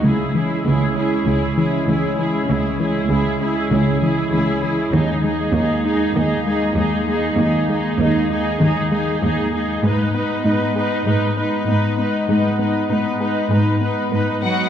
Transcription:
<<
  \new Staff \with { instrumentName = "Violin section" } { \time 4/4 \key gis \minor \tempo 4 = 98 r1 | r1 | r1 | r1 |
r1 | r2. r8 fis''8 | }
  \new Staff \with { instrumentName = "Viola section" } { \time 4/4 \key gis \minor <e' gis'>8 <e' gis'>8 <e' gis'>8 <e' gis'>8 <e' gis'>8 <e' gis'>8 <e' gis'>8 <e' gis'>8 | <e' gis'>8 <e' gis'>8 <e' gis'>8 <e' gis'>8 <e' gis'>8 <e' gis'>8 <e' gis'>8 <e' gis'>8 | <dis' gis'>8 <dis' gis'>8 <dis' gis'>8 <dis' gis'>8 <dis' gis'>8 <dis' gis'>8 <dis' gis'>8 <dis' gis'>8 | <dis' gis'>8 <dis' gis'>8 <dis' gis'>8 <dis' gis'>8 <dis' gis'>8 <dis' gis'>8 <dis' gis'>8 <dis' gis'>8 |
<dis' b'>8 <dis' b'>8 <dis' b'>8 <dis' b'>8 <dis' b'>8 <dis' b'>8 <dis' b'>8 <dis' b'>8 | <dis' b'>8 <dis' b'>8 <dis' b'>8 <dis' b'>8 <dis' b'>8 <dis' b'>8 <dis' b'>8 <dis' fis' b'>8 | }
  \new Staff \with { instrumentName = "Analog synth pad" } { \time 4/4 \key gis \minor <gis cis' e' cis''>1~ | <gis cis' e' cis''>1 | <gis ais dis' dis''>1~ | <gis ais dis' dis''>1 |
<gis b dis' dis''>1~ | <gis b dis' dis''>1 | }
  \new Staff \with { instrumentName = "Synth pluck" } { \clef bass \time 4/4 \key gis \minor cis8 e8 gis8 cis'8 cis8 e8 e8 e8 | cis8 e8 gis8 cis'8 cis8 e8 e8 e8 | dis8 gis8 ais8 dis'8 dis8 gis8 gis8 gis8 | dis8 gis8 ais8 dis'8 dis8 gis8 gis8 gis8 |
gis8 b8 dis'8 gis'8 gis8 b8 b8 b8 | gis8 b8 dis'8 gis'8 gis8 b8 b8 b8 | }
  \new Staff \with { instrumentName = "Cello section" } { \clef bass \time 4/4 \key gis \minor cis,4 cis,4 cis,4 cis,4 | cis,4 cis,4 cis,4 cis,4 | dis,4 dis,4 dis,4 dis,4 | dis,4 dis,4 dis,4 dis,4 |
gis,4 gis,4 gis,4 gis,4 | gis,4 gis,4 gis,4 gis,8 fis8 | }
>>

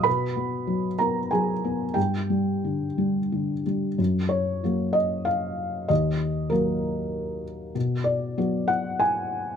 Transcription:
<<
  \new Staff \with { instrumentName = "Felt piano" } { \time 3/4 \key b \lydian \tempo 4 = 96 <b' b''>4. <ais' ais''>8 <gis' gis''>4 | <g' g''>2~ <g' g''>8 r8 | r8 cis''4 dis''8 eis''4 | dis''4 ais'4. r8 |
r8 d''4 fis''8 gis''4 | }
  \new Staff \with { instrumentName = "Felt piano" } { \clef bass \time 3/4 \key b \lydian b,8 b8 fis8 b8 fis8 b8 | g,8 g8 d8 g8 d8 g8 | fis,4 <fis ais fis'>2 | dis,4 <fis ais fis'>2 |
b,4 <fis b fis'>2 | }
>>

